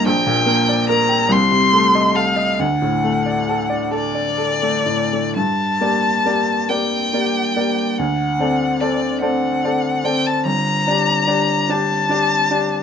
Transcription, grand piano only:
0.06 A#1
0.27 A#2
0.46 A#3
0.69 D5
0.89 A#4
1.09 G5
1.29 C2
1.51 C3
1.73 A3
1.95 D#5
2.15 A4
2.36 D#5
2.59 D2
2.82 A2
3.04 A3
3.26 D5
3.49 A4
3.70 D5
3.91 A4
4.15 D5
4.37 A4
4.62 A3
4.86 A2
5.13 A3
5.36 G2
5.81 A#3 G4 D5
6.26 A#3 G4 D5
6.69 A#3 G4 D5
7.13 A#3 G4 D5
7.56 A#3 G4 D5
7.99 D2
8.39 C4 A4 D5
8.81 C4 A4 D5
9.22 C4 A4 D5
9.64 C4 A4 D5
10.04 C4 A4 D5
10.45 G1
10.87 D4 G4 D5
11.27 D4 G4 D5
11.69 D4 G4 D5
12.09 D4 G4 D5
12.51 D4 G4 D5

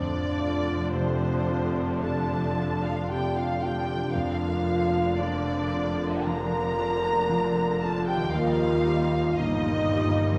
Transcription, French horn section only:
Already playing: D4
0.91 C4
2.01 A4
2.85 F4
3.10 G4
3.36 F4
3.65 G4
4.14 F4
5.19 D4
6.25 A#4
7.81 A4
8.06 G4
8.34 F4
9.37 D#4

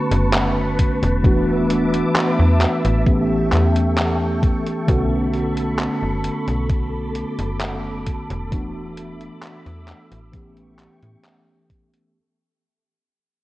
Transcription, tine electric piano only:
Already playing: D3 A3 B3 C#4 F#4
1.23 E3 A3 B3 D4 F#4
3.05 E3 A3 B3 C#4 G4
4.87 D3 A3 B3 C#4 F#4
8.51 E3 A3 B3 D4 F#4
10.32 E3 A3 B3 C#4 G4

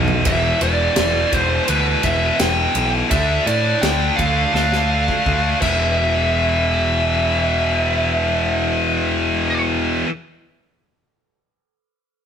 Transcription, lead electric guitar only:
0.27 E5
0.63 D5
1.34 C5
1.69 B4
2.04 E5
2.40 G5
3.11 E5
3.47 D5
3.81 G5
4.16 F5
5.62 E5

